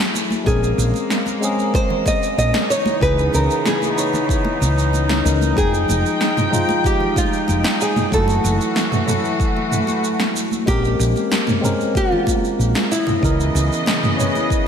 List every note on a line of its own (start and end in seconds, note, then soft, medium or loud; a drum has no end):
0.00 0.44 E3 medium
0.00 0.42 F#3 medium
0.00 0.42 A3 medium
0.00 0.44 A3 medium
0.00 0.43 E4 medium
0.00 0.44 F#4 medium
0.00 0.43 G#4 medium
0.15 muted conga medium
0.15 shaker medium
0.30 high conga medium
0.30 shaker soft
0.44 0.73 A#1 loud
0.44 1.37 G#3 medium
0.44 2.68 G#3 medium
0.44 2.68 A#3 medium
0.44 1.38 C4 medium
0.44 1.39 C#4 medium
0.44 1.70 G#4 medium
0.44 1.39 A#4 medium
0.44 kick loud
0.44 muted conga medium
0.44 shaker soft
0.64 shaker soft
0.78 0.91 A#1 loud
0.78 low conga medium
0.78 shaker medium
0.94 muted conga medium
0.94 shaker soft
1.10 snare medium
1.10 shaker soft
1.26 muted conga medium
1.26 high conga medium
1.26 shaker soft
1.41 2.67 G#3 medium
1.41 2.68 C4 medium
1.41 2.68 C#4 medium
1.41 2.69 G#4 loud
1.41 shaker medium
1.59 shaker soft
1.74 2.04 C5 loud
1.74 kick loud
1.74 muted conga soft
1.74 shaker soft
1.90 low conga medium
2.05 2.37 D#5 loud
2.05 kick loud
2.05 muted conga medium
2.05 high conga medium
2.05 shaker medium
2.23 shaker soft
2.38 2.51 A#1 medium
2.38 2.70 D#5 loud
2.38 shaker soft
2.54 snare medium
2.54 muted conga medium
2.70 5.54 C#3 medium
2.70 5.54 E3 medium
2.70 5.55 B3 medium
2.70 8.09 D#4 medium
2.70 3.02 C#5 medium
2.70 shaker medium
2.86 muted conga medium
2.86 high conga medium
2.86 shaker soft
3.00 3.28 C#2 loud
3.00 3.93 E3 medium
3.00 3.93 C#4 medium
3.00 3.94 D#4 medium
3.00 3.95 G#4 medium
3.00 3.34 B4 loud
3.00 kick loud
3.00 shaker soft
3.19 shaker soft
3.33 3.47 C#2 loud
3.33 3.64 A#4 medium
3.33 muted conga soft
3.33 low conga medium
3.33 shaker medium
3.51 shaker soft
3.65 4.90 G#4 medium
3.65 snare medium
3.65 muted conga medium
3.65 shaker soft
3.82 high conga medium
3.82 shaker soft
3.96 5.21 E3 medium
3.96 5.22 C#4 medium
3.96 5.22 D#4 medium
3.96 5.23 C#5 medium
3.96 shaker medium
4.13 muted conga soft
4.13 low conga medium
4.13 shaker soft
4.29 kick loud
4.29 shaker soft
4.45 muted conga medium
4.60 5.21 C#2 medium
4.60 high conga medium
4.60 shaker medium
4.78 shaker soft
4.93 muted conga soft
4.93 shaker soft
5.09 snare medium
5.24 5.52 C#2 medium
5.24 5.53 E3 medium
5.24 5.53 C#4 medium
5.24 5.53 D#4 medium
5.24 5.54 A#4 medium
5.24 muted conga medium
5.24 shaker medium
5.41 high conga medium
5.41 shaker soft
5.54 5.83 F1 loud
5.54 6.48 F3 medium
5.54 8.09 F3 medium
5.54 6.48 G#3 medium
5.54 6.49 D#4 medium
5.54 6.81 G#4 medium
5.54 8.09 G5 medium
5.54 kick loud
5.54 muted conga soft
5.54 shaker soft
5.58 6.50 G5 medium
5.74 shaker soft
5.88 6.02 F1 medium
5.88 muted conga medium
5.88 low conga medium
5.88 shaker medium
6.06 shaker soft
6.21 snare medium
6.21 shaker soft
6.37 mid tom medium
6.37 muted conga soft
6.37 high conga medium
6.37 shaker soft
6.50 8.07 F3 medium
6.50 8.08 G#3 medium
6.50 8.09 D#4 medium
6.50 8.09 F4 medium
6.50 mid tom medium
6.50 shaker medium
6.69 muted conga medium
6.69 shaker soft
6.84 7.18 G4 medium
6.84 kick loud
6.84 shaker soft
7.00 low conga medium
7.16 7.77 F4 medium
7.16 kick loud
7.16 muted conga medium
7.16 high conga medium
7.16 shaker medium
7.33 shaker soft
7.48 7.62 F1 medium
7.48 muted conga medium
7.48 shaker soft
7.64 snare medium
7.81 8.13 G#4 medium
7.81 shaker medium
7.96 mid tom medium
7.96 muted conga medium
7.96 high conga medium
7.96 shaker soft
8.11 8.39 F#1 medium
8.11 10.65 E3 medium
8.11 9.03 F#3 medium
8.11 10.65 A3 medium
8.11 9.04 A3 medium
8.11 9.05 E4 medium
8.11 10.65 F#4 medium
8.11 9.05 F#4 medium
8.11 10.00 A4 loud
8.11 kick loud
8.11 shaker soft
8.28 muted conga medium
8.28 shaker soft
8.44 8.57 F#1 medium
8.44 low conga medium
8.44 shaker medium
8.61 shaker soft
8.76 snare medium
8.76 muted conga medium
8.76 shaker soft
8.92 mid tom medium
8.92 high conga medium
8.92 shaker soft
9.06 10.63 F#3 medium
9.06 10.63 A3 medium
9.06 10.64 E4 medium
9.06 10.64 A4 medium
9.06 mid tom medium
9.06 muted conga medium
9.06 shaker medium
9.25 shaker soft
9.40 kick loud
9.40 shaker soft
9.57 muted conga soft
9.71 mid tom medium
9.71 high conga medium
9.71 shaker medium
9.87 muted conga medium
9.87 shaker soft
10.04 shaker soft
10.20 snare medium
10.35 muted conga soft
10.35 shaker medium
10.51 high conga medium
10.51 shaker soft
10.66 10.94 A#1 loud
10.66 11.59 G#3 medium
10.66 12.88 A#3 medium
10.66 11.59 C4 medium
10.66 11.60 C#4 medium
10.66 11.99 G4 loud
10.66 kick loud
10.66 muted conga medium
10.66 shaker soft
10.70 11.61 A#4 loud
10.85 shaker soft
10.99 11.13 A#1 loud
10.99 low conga medium
10.99 shaker medium
11.16 muted conga soft
11.16 shaker soft
11.32 snare medium
11.32 shaker soft
11.47 mid tom medium
11.47 muted conga medium
11.47 high conga medium
11.47 shaker soft
11.61 12.88 G#3 medium
11.61 12.88 C4 medium
11.61 12.89 C#4 medium
11.61 12.90 A#4 medium
11.61 mid tom medium
11.61 shaker medium
11.81 shaker soft
11.95 12.91 F4 loud
11.95 kick loud
11.95 muted conga soft
11.95 shaker soft
12.12 low conga medium
12.27 kick medium
12.27 muted conga medium
12.27 high conga medium
12.27 shaker medium
12.45 shaker soft
12.59 12.72 A#1 medium
12.59 shaker soft
12.75 snare medium
12.75 muted conga medium
12.90 14.68 C#3 medium
12.90 14.68 E3 medium
12.90 14.68 B3 medium
12.90 14.68 E4 medium
12.90 14.68 D#5 medium
12.90 shaker medium
13.07 mid tom medium
13.07 muted conga medium
13.07 high conga medium
13.07 shaker soft
13.20 13.49 C#2 medium
13.20 14.14 E3 medium
13.20 14.14 C#4 medium
13.20 14.15 D#5 medium
13.20 kick loud
13.20 shaker soft
13.25 14.16 A#4 medium
13.40 shaker soft
13.55 13.68 C#2 loud
13.55 muted conga soft
13.55 low conga medium
13.55 shaker medium
13.72 shaker soft
13.86 snare medium
13.86 muted conga medium
13.86 shaker soft
14.03 mid tom medium
14.03 high conga medium
14.03 shaker soft
14.16 14.68 E3 medium
14.16 14.68 C#4 medium
14.16 14.68 D#5 medium
14.16 mid tom medium
14.20 14.68 C#5 medium
14.20 shaker medium
14.35 muted conga medium
14.35 shaker soft
14.50 kick loud
14.50 shaker soft